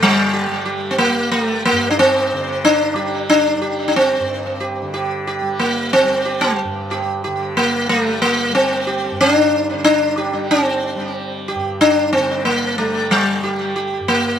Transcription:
Already playing: G2 D3 G3
0.03 G3
0.33 G4
0.47 G3
0.65 G4
0.91 C4
0.98 A#3
1.08 G3
1.32 A3
1.65 A#3
1.72 G2
1.91 D4
1.99 C4
2.33 D3
2.65 D4
2.94 G3 G4
3.30 D4
3.57 G3
3.62 G4
3.88 D4
3.96 C4
4.20 G2
4.60 G4
4.82 D3
4.94 G4
5.27 G4
5.42 G3
5.59 A#3
5.93 C4
6.04 G3
6.25 G4
6.41 G3
6.64 G2
6.91 G4
7.24 D3 G4
7.57 A#3
7.88 G3 A3
8.22 A#3
8.50 G3
8.55 C4
8.87 G4
9.12 G2
9.21 D4
9.73 D3
9.85 D4
10.18 G4
10.33 G3
10.51 C4
10.95 G3
11.48 G4
11.55 G2
11.81 D4
12.13 C4
12.17 D3
12.45 A#3
12.78 G3 A3
13.11 G3
13.40 G3 G4
13.76 G4
14.00 G2
14.08 A#3

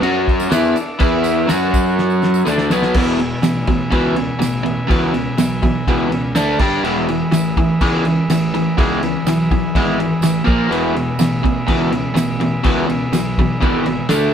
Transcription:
0.01 F#2 F#3 C#4 F#4 C#5, crash
0.28 kick, crash
0.40 snare, tambourine
0.47 E2 E3 B3 D4 A4 D5
0.51 E4, snare, tambourine, crash
0.65 tambourine
0.76 tambourine, crash
0.98 E2 E3 B3 E4 B4 E5, kick, tambourine, crash
1.24 tambourine, crash
1.46 F#3 C#4 F#4 C#5 F#5, snare, tambourine, crash
1.50 F#2 F#4
1.74 kick, tambourine, crash
1.86 tambourine
1.98 snare, tambourine
2.10 tambourine
2.22 E5, snare, tambourine
2.34 tambourine
2.45 D2 D3 A3 D4 A4 D5 F#5 A5, snare, tambourine
2.58 snare
2.70 B1 B2 F#3 B3 G#5, snare, tambourine
2.83 snare, tambourine
2.94 E1 E2 B2 B4 E5 G#5, kick, crash
2.98 E3
3.20 E2 B2, crash
3.43 A1 E2 B2, snare, tambourine, crash
3.67 E2 B2, kick, crash
3.91 C#2 E2 B2 E3, kick, crash
4.16 E2 B2, crash
4.39 A1 E2 B2, snare, tambourine, crash
4.63 E2 B2, crash
4.87 C#2 E2 B2 E3, kick, crash
5.13 E2 B2, crash
5.38 B1 E2 B2, snare, tambourine, crash
5.62 E2 B2, kick, crash
5.87 C#2 E2 B2 E3, kick, crash
6.10 E2 B2 E5, crash
6.23 G#5
6.35 D2 D3 A3 D4 A5, snare, tambourine, crash
6.59 G1 G3 D4 G4, kick, crash
6.83 E1 E2 E3 G#3 G#4 B4 E5, crash
7.09 E2 E3, crash
7.32 A1 E2 E3, snare, tambourine, crash
7.57 E2 E3, kick, crash
7.81 C#2 E2 E3 G#3, kick, crash
8.05 E2 E3, crash
8.28 A1 E2 E3, snare, tambourine, crash
8.54 E2 E3, crash
8.77 C#2 E2 E3 G#3, kick, crash
9.03 E2 E3, crash
9.25 B1 E2 E3, snare, tambourine, crash
9.51 E2 E3, kick, crash
9.75 G#1 E2 E3 G#3, kick, crash
10.00 E2 E3, crash
10.21 A1 E2 E3, snare, tambourine, crash
10.44 A#1 A#2 F3 A#3, kick, crash
10.69 E1 E2 B2 E3 G#4, crash
10.75 B4 E5
10.95 E2 B2, crash
11.18 A1 E2 B2, snare, tambourine, crash
11.43 E2 B2, kick, crash
11.67 C#2 E2 B2 E3, kick, crash
11.91 E2 B2, crash
12.15 A1 E2 B2, snare, tambourine, crash
12.40 E2 B2, crash
12.63 C#2 E2 B2 E3, kick, crash
12.87 E2 B2, crash
13.12 B1 E2 B2, snare, tambourine, crash
13.38 E2 B2, kick, crash
13.61 G#1 E2 B2 E3, kick, crash
13.86 E2 B2, crash
14.09 D2 D3 A3 D4, snare, tambourine, crash

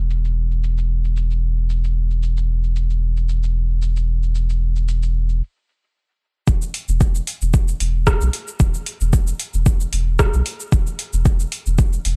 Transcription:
Already playing: E1
0.10 shaker
0.25 shaker
0.51 shaker
0.63 shaker
0.78 shaker
1.04 shaker
1.17 shaker
1.31 shaker
1.70 shaker
1.84 shaker
2.11 shaker
2.23 shaker
2.37 shaker
2.64 shaker
2.76 shaker
2.90 shaker
3.17 shaker
3.29 shaker
3.43 shaker
3.82 shaker
3.96 shaker
4.23 shaker
4.35 shaker
4.49 shaker
4.76 shaker
4.88 shaker
5.03 shaker
5.29 shaker
6.48 E1, kick, shaker
6.62 shaker
6.74 open hi-hat
6.88 E1, shaker
7.01 kick, shaker
7.15 shaker
7.27 open hi-hat
7.42 E1, shaker
7.54 kick, shaker
7.68 shaker
7.80 E1, open hi-hat
8.07 kick, cross-stick, shaker
8.21 B1, shaker
8.33 open hi-hat
8.48 shaker
8.60 E1, kick, shaker
8.74 shaker
8.86 open hi-hat
9.01 E1, shaker
9.13 kick, shaker
9.27 shaker
9.39 open hi-hat
9.54 E1, shaker
9.66 kick, shaker
9.80 shaker
9.93 E1, open hi-hat
10.19 kick, cross-stick, shaker
10.34 B1, shaker
10.46 open hi-hat
10.60 shaker
10.72 E1, kick, shaker
10.87 shaker
10.99 open hi-hat
11.13 E1, shaker
11.25 kick, shaker
11.40 shaker
11.52 open hi-hat
11.66 E1, shaker
11.78 kick, shaker
11.93 shaker
12.05 E1, open hi-hat

